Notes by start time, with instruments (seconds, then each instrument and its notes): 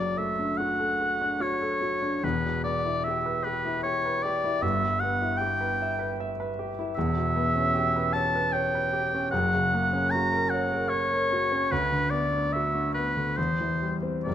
Already playing: grand piano F#1 F#2 F#3, oboe D5
0.17 grand piano A3, oboe E5
0.39 grand piano D4
0.58 grand piano F#4, oboe F#5
0.79 grand piano A4
1.01 grand piano F#4
1.21 grand piano D4
1.40 grand piano F#4, oboe C#5
1.61 grand piano A4
1.81 grand piano F#4
2.02 grand piano D4
2.23 grand piano E1 E2, oboe B4
2.45 grand piano B2
2.64 grand piano B3, oboe D5
2.85 grand piano E4
3.04 grand piano G4, oboe E5
3.26 grand piano B4
3.44 grand piano G4, oboe B4
3.65 grand piano E4
3.83 grand piano G4, oboe C#5
4.05 grand piano B4
4.23 grand piano G4, oboe D5
4.44 grand piano E4
4.62 grand piano G1 G2, oboe E5
4.83 grand piano G3
5.00 grand piano B3, oboe F#5
5.22 grand piano E4
5.38 grand piano G4, oboe G5
5.61 grand piano B4
5.82 grand piano E5
5.99 grand piano B4
6.20 grand piano E5
6.40 grand piano B4
6.59 grand piano G4
6.79 grand piano E4
6.95 grand piano E1 E2, oboe E5
7.17 grand piano B2
7.36 grand piano B3
7.56 grand piano C#4
7.75 grand piano G4
7.96 grand piano B4
8.13 grand piano C#5, oboe A5
8.35 grand piano B4
8.53 grand piano C#5, oboe G5
8.75 grand piano B4
8.93 grand piano G4
9.14 grand piano C#4
9.31 grand piano F#1 F#2, oboe F#5
9.54 grand piano C#3
9.73 grand piano A#3
9.93 grand piano C#4
10.11 grand piano F#4, oboe A#5
10.33 grand piano A#4
10.50 grand piano C#5, oboe F#5
10.73 grand piano A#4
10.89 oboe C#5, grand piano C#5
11.13 grand piano A#4
11.32 grand piano F#4
11.52 grand piano C#4
11.71 grand piano D2, oboe B4
11.92 grand piano D3
12.11 grand piano B3, oboe D5
12.33 grand piano D4
12.53 grand piano F#4, oboe E5
12.75 grand piano D4
12.94 grand piano B3, oboe B4
13.17 grand piano D3
13.37 grand piano E2, oboe C5
13.61 grand piano E3
13.82 grand piano G3
14.02 grand piano C4
14.24 grand piano F#1 F#2, oboe D5